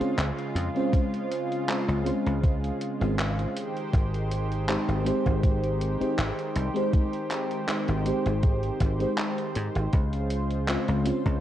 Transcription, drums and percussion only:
0.01 closed hi-hat soft
0.19 clap loud
0.19 closed hi-hat medium
0.39 closed hi-hat soft
0.56 closed hi-hat medium
0.76 closed hi-hat soft
0.93 kick loud
0.93 closed hi-hat medium
1.14 closed hi-hat soft
1.31 closed hi-hat medium
1.52 closed hi-hat soft
1.69 clap loud
1.69 closed hi-hat medium
1.89 closed hi-hat soft
2.06 closed hi-hat medium
2.26 closed hi-hat soft
2.43 kick loud
2.43 closed hi-hat medium
2.64 closed hi-hat soft
2.81 closed hi-hat medium
3.01 closed hi-hat soft
3.19 clap loud
3.19 closed hi-hat medium
3.39 closed hi-hat soft
3.57 closed hi-hat medium
3.77 closed hi-hat soft
3.93 kick loud
3.93 closed hi-hat medium
4.14 closed hi-hat soft
4.31 closed hi-hat medium
4.52 closed hi-hat soft
4.69 clap loud
4.69 closed hi-hat medium
4.89 closed hi-hat soft
5.06 closed hi-hat medium
5.26 kick medium
5.26 closed hi-hat soft
5.43 kick loud
5.43 closed hi-hat medium
5.64 closed hi-hat soft
5.81 closed hi-hat medium
6.01 closed hi-hat soft
6.19 clap loud
6.19 closed hi-hat medium
6.39 closed hi-hat soft
6.56 closed hi-hat medium
6.76 closed hi-hat soft
6.93 kick loud
6.93 closed hi-hat medium
7.13 closed hi-hat soft
7.31 clap medium
7.31 closed hi-hat medium
7.51 closed hi-hat soft
7.69 clap loud
7.69 closed hi-hat medium
7.88 closed hi-hat soft
8.06 closed hi-hat medium
8.26 closed hi-hat soft
8.43 kick loud
8.43 closed hi-hat medium
8.63 closed hi-hat soft
8.81 kick medium
8.81 closed hi-hat medium
9.00 closed hi-hat soft
9.18 clap loud
9.18 closed hi-hat medium
9.38 closed hi-hat soft
9.55 closed hi-hat loud
9.75 closed hi-hat soft
9.93 kick loud
9.93 closed hi-hat medium
10.13 closed hi-hat soft
10.30 closed hi-hat loud
10.50 closed hi-hat soft
10.68 clap loud
10.68 closed hi-hat medium
10.88 closed hi-hat soft
11.06 closed hi-hat medium
11.26 kick medium
11.26 closed hi-hat soft

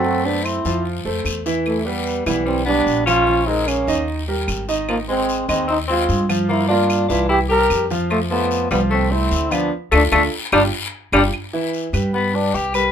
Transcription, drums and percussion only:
0.04 long guiro medium
0.45 short guiro medium
0.45 claves medium
0.65 short guiro medium
0.85 long guiro medium
1.25 short guiro medium
1.25 claves medium
1.46 short guiro medium
1.66 long guiro medium
1.66 claves medium
2.06 short guiro medium
2.26 short guiro medium
2.26 claves medium
2.47 long guiro medium
2.87 short guiro medium
3.07 short guiro medium
3.07 claves medium
3.27 long guiro medium
3.68 short guiro medium
3.68 claves medium
3.88 short guiro medium
4.08 long guiro medium
4.48 short guiro medium
4.48 claves medium
4.69 short guiro medium
4.89 long guiro medium
4.89 claves medium
5.29 short guiro medium
5.49 short guiro medium
5.49 claves medium
5.69 long guiro medium
6.09 short guiro medium
6.30 short guiro medium
6.30 claves medium
6.49 long guiro medium
6.90 short guiro medium
6.90 claves medium
7.10 short guiro medium
7.30 long guiro medium
7.70 short guiro medium
7.70 claves medium
7.91 short guiro medium
8.10 long guiro medium
8.10 claves medium
8.51 short guiro medium
8.71 short guiro medium
8.71 claves medium
8.91 long guiro medium
9.31 short guiro medium
9.51 short guiro medium
9.51 claves medium
9.92 long guiro loud
9.92 claves loud
10.12 long guiro loud
10.12 claves loud
10.52 long guiro medium
10.52 claves loud
11.13 long guiro loud
11.13 claves loud
11.33 long guiro medium
11.33 claves medium
11.73 short guiro medium
11.94 short guiro medium
11.94 claves medium
12.14 long guiro medium
12.54 short guiro medium
12.74 short guiro medium
12.74 claves medium

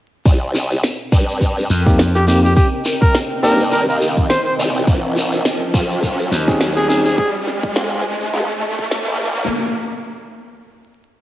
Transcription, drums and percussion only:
0.26 kick loud
0.26 closed hi-hat medium
0.26 shekere medium
0.55 snare soft
0.55 closed hi-hat soft
0.55 shekere medium
0.71 closed hi-hat medium
0.71 shekere soft
0.84 snare loud
0.84 closed hi-hat medium
0.84 shekere medium
1.12 kick loud
1.12 closed hi-hat soft
1.12 shekere medium
1.29 closed hi-hat medium
1.29 shekere soft
1.41 kick medium
1.41 closed hi-hat medium
1.41 shekere soft
1.58 shekere soft
1.70 shekere medium
1.86 kick loud
1.86 closed hi-hat medium
1.86 shekere soft
1.99 snare loud
1.99 closed hi-hat medium
1.99 shekere medium
2.15 snare medium
2.15 closed hi-hat medium
2.28 shekere medium
2.44 closed hi-hat medium
2.44 shekere soft
2.56 kick loud
2.56 closed hi-hat medium
2.56 shekere medium
2.85 snare soft
2.85 closed hi-hat soft
2.85 shekere medium
3.02 kick loud
3.02 closed hi-hat medium
3.15 snare loud
3.15 closed hi-hat medium
3.15 shekere medium
3.43 closed hi-hat soft
3.43 shekere medium
3.60 closed hi-hat medium
3.60 shekere soft
3.71 snare soft
3.71 closed hi-hat medium
3.71 shekere medium
3.89 shekere soft
4.01 shekere medium
4.17 kick medium
4.17 closed hi-hat medium
4.17 shekere soft
4.30 snare loud
4.30 closed hi-hat medium
4.30 shekere soft
4.46 closed hi-hat medium
4.60 shekere medium
4.75 closed hi-hat medium
4.75 shekere soft
4.87 kick loud
4.87 closed hi-hat medium
4.87 shekere medium
5.16 snare soft
5.16 closed hi-hat soft
5.16 shekere medium
5.32 closed hi-hat medium
5.32 shekere soft
5.45 snare loud
5.45 closed hi-hat medium
5.45 shekere medium
5.74 kick loud
5.74 closed hi-hat soft
5.74 shekere loud
5.90 closed hi-hat medium
5.90 shekere soft
6.03 kick medium
6.03 closed hi-hat medium
6.03 shekere medium
6.19 shekere soft
6.32 shekere medium
6.48 kick loud
6.48 closed hi-hat medium
6.48 shekere soft
6.61 snare loud
6.61 closed hi-hat medium
6.61 shekere medium
6.77 snare medium
6.77 closed hi-hat medium
6.90 shekere medium
7.05 closed hi-hat medium
7.05 shekere soft
7.18 kick loud
7.18 closed hi-hat medium
7.47 snare soft
7.47 closed hi-hat soft
7.63 kick loud
7.63 closed hi-hat medium
7.76 snare loud
7.76 closed hi-hat medium
8.05 closed hi-hat soft
8.21 closed hi-hat medium
8.34 snare soft
8.34 closed hi-hat medium
8.79 kick medium
8.91 snare loud
8.91 closed hi-hat medium
9.08 closed hi-hat medium
9.37 closed hi-hat medium

